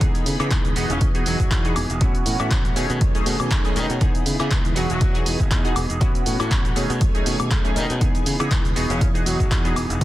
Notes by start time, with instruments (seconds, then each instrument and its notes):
0.00 fingered electric bass C#2, clean electric guitar E3 B3 D#4 G#4, analog polysynth E3 B3 D#4 G#4, string machine E3 D#5 B5, kick, closed hi-hat, cabasa
0.15 closed hi-hat, cabasa
0.25 fingered electric bass C#3, clean electric guitar E3 B3 D#4 G#4, open hi-hat, cabasa
0.40 fingered electric bass C#3, analog polysynth B3 D#4 E4 G#4, closed hi-hat, cabasa, high woodblock
0.50 fingered electric bass C#2, clean electric guitar E3 B3 D#4 G#4, kick, clap, closed hi-hat, cabasa
0.65 closed hi-hat, cabasa
0.75 fingered electric bass E1, clean electric guitar E3 B3 D#4 G#4, analog polysynth B3 D#4 F#4 G#4, string machine G#5, open hi-hat, cabasa
0.89 fingered electric bass E1, horn section C#3 C#4, clean electric guitar B3 D#4 G#4, closed hi-hat, cabasa
1.01 fingered electric bass E2, kick, closed hi-hat, cabasa
1.14 analog polysynth B3 D#4 F#4 G#4, clean electric guitar B3 D#4 G#4, closed hi-hat, cabasa
1.25 fingered electric bass E1, clean electric guitar E3 B3 D#4 G#4, horn section F#3 F#4, open hi-hat, cabasa
1.40 fingered electric bass E1, kick, closed hi-hat, cabasa
1.50 fingered electric bass E2, clean electric guitar E3 B3 D#4 G#4, kick, clap, closed hi-hat, cabasa
1.65 analog polysynth B3 D#4 F#4 G#4, closed hi-hat, cabasa
1.75 fingered electric bass E1, clean electric guitar E3 B3 D#4 G#4, open hi-hat, cabasa, high woodblock
1.89 fingered electric bass E1, clean electric guitar B3 D#4 G#4, closed hi-hat, cabasa
2.01 analog polysynth B3 C#4 E4 F#4, clean electric guitar B3 C#4 F#4, string machine F#4 C#5 B5, kick, closed hi-hat, cabasa
2.15 closed hi-hat, cabasa
2.25 fingered electric bass A2, clean electric guitar E3 B3 C#4 F#4, open hi-hat, cabasa
2.39 fingered electric bass A2, analog polysynth B3 C#4 E4 F#4, closed hi-hat, cabasa, high woodblock
2.50 fingered electric bass A1, clean electric guitar E3 C#4 F#4, kick, clap, closed hi-hat, cabasa
2.64 clean electric guitar B3 C#4 F#4, closed hi-hat, cabasa
2.75 fingered electric bass B2, clean electric guitar D#3 A3 C#4 G#4, analog polysynth A3 C#4 D#4 G#4, string machine A3 D#4 G#5, open hi-hat, cabasa
2.90 fingered electric bass B2, closed hi-hat, cabasa
3.01 fingered electric bass B1, kick, closed hi-hat, cabasa
3.14 analog polysynth A3 C#4 D#4 G#4, clean electric guitar A3 C#4 G#4, closed hi-hat, cabasa
3.25 fingered electric bass B2, clean electric guitar D#3 A3 C#4 G#4, open hi-hat, cabasa
3.40 fingered electric bass B2, closed hi-hat, cabasa, high woodblock
3.50 fingered electric bass B1, clean electric guitar D#3, kick, clap, closed hi-hat, cabasa
3.64 analog polysynth A3 C#4 D#4 G#4, closed hi-hat, cabasa
3.75 fingered electric bass B2, clean electric guitar D#3 A3 C#4 G#4, horn section D#3 D#4, open hi-hat, cabasa
3.89 fingered electric bass B2, clean electric guitar A3 C#4 G#4, closed hi-hat, cabasa
4.00 fingered electric bass C#2, clean electric guitar E3 B3 D#4 G#4, string machine E3 D#5 B5, analog polysynth E3 B3 D#4 G#4, kick, closed hi-hat, cabasa
4.15 closed hi-hat, cabasa
4.25 fingered electric bass C#3, clean electric guitar E3 B3 D#4 G#4, open hi-hat, cabasa
4.39 fingered electric bass C#3, analog polysynth B3 D#4 E4 G#4, closed hi-hat, cabasa, high woodblock
4.51 fingered electric bass C#2, clean electric guitar B3 D#4 G#4, kick, clap, closed hi-hat, cabasa
4.65 closed hi-hat, cabasa
4.75 fingered electric bass E1, clean electric guitar E3 B3 D#4 G#4, horn section F#3 F#4, analog polysynth B3 D#4 F#4 G#4, string machine G#5, open hi-hat, cabasa
4.89 fingered electric bass E1, horn section F#3 F#4, clean electric guitar B3 D#4 G#4, closed hi-hat, cabasa
5.01 fingered electric bass E2, kick, closed hi-hat, cabasa
5.14 analog polysynth B3 D#4 F#4 G#4, clean electric guitar B3 D#4 G#4, closed hi-hat, cabasa
5.25 fingered electric bass E1, clean electric guitar E3 B3 D#4 G#4, open hi-hat, cabasa
5.40 fingered electric bass E1, kick, closed hi-hat, cabasa
5.50 fingered electric bass E2, clean electric guitar E3 B3 D#4 G#4, kick, clap, closed hi-hat, cabasa
5.64 analog polysynth B3 D#4 F#4 G#4, closed hi-hat, cabasa
5.75 fingered electric bass E1, clean electric guitar E3 B3 D#4 G#4, open hi-hat, cabasa, high woodblock
5.89 fingered electric bass E1, clean electric guitar B3 D#4 G#4, closed hi-hat, cabasa
6.00 fingered electric bass A1, clean electric guitar E3 B3 C#4 F#4, analog polysynth B3 C#4 E4 F#4, string machine F#4 C#5 B5, kick, closed hi-hat, cabasa
6.15 closed hi-hat, cabasa
6.25 fingered electric bass A2, clean electric guitar E3 B3 C#4 F#4, open hi-hat, cabasa
6.39 fingered electric bass A2, analog polysynth B3 C#4 E4 F#4, closed hi-hat, cabasa, high woodblock
6.51 fingered electric bass A1, clean electric guitar B3 C#4 F#4, kick, clap, closed hi-hat, cabasa
6.64 clean electric guitar B3 C#4 F#4, closed hi-hat, cabasa
6.75 fingered electric bass B2, clean electric guitar D#3 A3 C#4 G#4, analog polysynth A3 C#4 D#4 G#4, string machine A3 D#4 G#5, open hi-hat, cabasa
6.89 fingered electric bass B2, clean electric guitar A3 C#4 G#4, closed hi-hat, cabasa
7.01 fingered electric bass B1, kick, closed hi-hat, cabasa
7.14 analog polysynth A3 C#4 D#4 G#4, clean electric guitar A3 C#4 G#4, closed hi-hat, cabasa
7.25 fingered electric bass B2, clean electric guitar D#3 A3 C#4 G#4, open hi-hat, cabasa
7.40 fingered electric bass B2, closed hi-hat, cabasa, high woodblock
7.50 fingered electric bass B1, clean electric guitar D#3 A3 C#4 G#4, kick, clap, closed hi-hat, cabasa
7.64 analog polysynth A3 C#4 D#4 G#4, closed hi-hat, cabasa
7.75 fingered electric bass B2, clean electric guitar D#3 A3 C#4 G#4, horn section D#3 D#4, open hi-hat, cabasa
7.89 fingered electric bass B2, clean electric guitar A3 C#4 G#4, closed hi-hat, cabasa
8.00 fingered electric bass C#2, clean electric guitar E3 B3 D#4 G#4, analog polysynth E3 B3 D#4 G#4, string machine E3 D#5 B5, kick, closed hi-hat, cabasa
8.15 closed hi-hat, cabasa
8.25 fingered electric bass C#3, clean electric guitar E3 B3 D#4 G#4, open hi-hat, cabasa
8.39 fingered electric bass C#3, analog polysynth B3 D#4 E4 G#4, closed hi-hat, cabasa, high woodblock
8.50 fingered electric bass C#2, clean electric guitar E3 D#4 G#4, kick, clap, closed hi-hat, cabasa
8.64 clean electric guitar B3 D#4 G#4, closed hi-hat, cabasa
8.75 fingered electric bass E1, clean electric guitar E3 B3 D#4 G#4, analog polysynth B3 D#4 F#4 G#4, string machine G#5, open hi-hat, cabasa
8.90 fingered electric bass E1, horn section C#3 C#4, closed hi-hat, cabasa
9.01 fingered electric bass E2, kick, closed hi-hat, cabasa
9.14 analog polysynth B3 D#4 F#4 G#4, clean electric guitar B3 D#4 G#4, closed hi-hat, cabasa
9.25 fingered electric bass E1, clean electric guitar E3 B3 D#4 G#4, horn section F#3 F#4, open hi-hat, cabasa
9.40 fingered electric bass E1, kick, closed hi-hat, cabasa
9.50 fingered electric bass E2, clean electric guitar E3 B3 D#4 G#4, kick, clap, closed hi-hat, cabasa
9.64 analog polysynth B3 D#4 F#4 G#4, closed hi-hat, cabasa
9.75 fingered electric bass E1, clean electric guitar E3 B3 D#4 G#4, open hi-hat, cabasa, high woodblock
9.89 fingered electric bass E1, clean electric guitar B3 D#4 G#4, closed hi-hat, cabasa
10.01 analog polysynth B3 C#4, string machine B5, kick